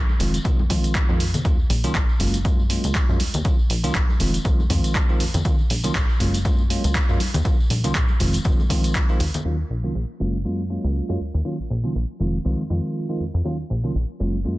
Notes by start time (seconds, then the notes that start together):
0.09 tambourine, high conga
0.20 F1 D#3 F3 G#3 C4 F4, open hi-hat
0.34 closed hi-hat, tambourine
0.45 C2 D#3 F3 G#3 C4 F4, kick, closed hi-hat
0.59 F2, tambourine, high conga
0.70 F2 D#3 F3 G#3 C4 F4, kick, open hi-hat, high conga
0.84 closed hi-hat, tambourine
0.95 kick, clap, closed hi-hat
1.09 F2 D#3 F3 G#3 C4 F4, tambourine
1.20 open hi-hat
1.34 C3, closed hi-hat, tambourine, low conga
1.45 D#2 D#3 F#3 A#3 C#4 F4, kick, closed hi-hat
1.59 tambourine
1.70 A#1, open hi-hat, high conga
1.84 C#2 D#3 F#3 A#3 C#4 F4, closed hi-hat, tambourine
1.95 A#1, kick, clap, closed hi-hat
2.09 tambourine
2.20 F#1 F#3 G#3 A#3 C#4 F4, open hi-hat
2.34 closed hi-hat, tambourine
2.45 F#2 F#3 G#3 A#3 C#4 F4, kick, closed hi-hat, tambourine
2.59 tambourine
2.70 F#3 G#3 A#3 C#4 F4, open hi-hat
2.84 C#2, closed hi-hat, tambourine
2.95 kick, clap, closed hi-hat
3.09 F#2 F#3 G#3 A#3 C#4 F4, tambourine
3.20 D#2, open hi-hat, high conga
3.34 D#2, closed hi-hat, tambourine, low conga
3.45 D#3 F#3 A#3 C#4 F4, kick, closed hi-hat
3.59 A#1, tambourine
3.70 A#1, open hi-hat
3.84 C#2 D#3 F#3 A#3 C#4 F4, closed hi-hat, tambourine
3.95 A#1, kick, clap, closed hi-hat
4.09 tambourine, high conga
4.20 F1 D#3 F3 G#3 C4 F4, open hi-hat
4.34 closed hi-hat, tambourine
4.45 C2 D#3 F3 G#3 C4 F4, kick, closed hi-hat
4.59 F2, tambourine, high conga
4.70 F2 D#3 F3 G#3 C4 F4, kick, open hi-hat, high conga
4.84 closed hi-hat, tambourine
4.95 kick, clap, closed hi-hat
5.09 D#3 F3 G#3 C4 F4, tambourine
5.20 F2, open hi-hat
5.34 F2, closed hi-hat, tambourine, low conga
5.45 D#2 D#3 F#3 A#3 C#4 F4, kick, closed hi-hat, tambourine
5.59 tambourine
5.70 A#1, open hi-hat, high conga
5.84 C#2 D#3 F#3 A#3 C#4 F4, closed hi-hat, tambourine
5.95 A#1, kick, clap, closed hi-hat, tambourine
6.09 tambourine
6.20 F#1 F#3 G#3 A#3 C#4 F4, open hi-hat
6.34 closed hi-hat, tambourine
6.45 F#2 F#3 G#3 A#3 C#4 F4, kick, closed hi-hat, tambourine
6.58 tambourine
6.70 F#3 G#3 A#3 C#4 F4, open hi-hat
6.84 C#2, closed hi-hat, tambourine
6.95 kick, clap, closed hi-hat
7.09 F#2 F#3 G#3 A#3 C#4 F4, tambourine
7.20 open hi-hat, high conga
7.34 D#2, closed hi-hat, tambourine, low conga
7.45 D#3 F#3 A#3 C#4 F4, kick, closed hi-hat, tambourine
7.59 A#1, tambourine
7.70 A#1, open hi-hat, high conga
7.84 C#2 D#3 F#3 A#3 C#4 F4, closed hi-hat, tambourine
7.95 A#1, kick, clap, closed hi-hat, tambourine
8.08 tambourine, high conga
8.20 F1 D#3 F3 G#3 C4 F4, open hi-hat
8.33 closed hi-hat, tambourine
8.44 F1 D#3 F3 G#3 C4 F4, kick, closed hi-hat, tambourine
8.59 tambourine, high conga
8.69 D#3 F3 G#3 C4 F4, kick, open hi-hat, high conga
8.84 closed hi-hat, tambourine
8.95 kick, clap, closed hi-hat
9.09 D#3 F3 G#3 C4 F4, tambourine
9.20 D#2, open hi-hat
9.34 closed hi-hat, tambourine, low conga
9.45 D#2 D#3 F#3 A#3 C#4 F4
9.70 A#1
9.84 C#2 D#3 F#3 A#3 C#4 F4
9.95 A#1
10.20 F#1 F#3 G#3 A#3 C#4 F4
10.45 F#2 F#3 G#3 A#3 C#4 F4
10.70 F#3 G#3 A#3 C#4 F4
10.84 C#2
11.09 F#2 F#3 G#3 A#3 C#4 F4
11.20 D#2
11.34 D#2
11.45 D#3 F#3 A#3 C#4 F4
11.59 A#1
11.70 A#1
11.84 C#2 D#3 F#3 A#3 C#4 F4
11.95 A#1
12.20 F1 D#3 F3 G#3 C4 F4
12.45 C2 D#3 F3 G#3 C4 F4
12.59 F2
12.70 F2 D#3 F3 G#3 C4 F4
13.09 D#3 F3 G#3 C4 F4
13.20 F2
13.34 F2
13.45 D#2 D#3 F#3 A#3 C#4 F4
13.70 A#1
13.84 C#2 D#3 F#3 A#3 C#4 F4
13.95 A#1
14.20 F#1 F#3 G#3 A#3 C#4 F4
14.45 F#2 F#3 G#3 A#3 C#4 F4